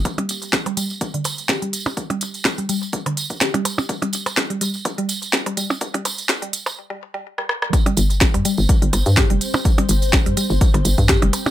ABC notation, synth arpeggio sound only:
X:1
M:4/4
L:1/16
Q:"Swing 16ths" 1/4=125
K:Cm
V:1 name="Synth arpeggio sound" clef=bass
z G, z3 G, G, z2 D, z2 G G, z2 | z G, z3 G, G, z2 D, z2 G G, z2 | z G, z3 G, G, z2 G, z3 G, G, z | z G, z3 G, z3 G, z G, z G, z G, |
z G, z3 G, G, z2 D, z2 G G, z2 | z G, z3 G, G, z2 D, z2 G G, z2 |]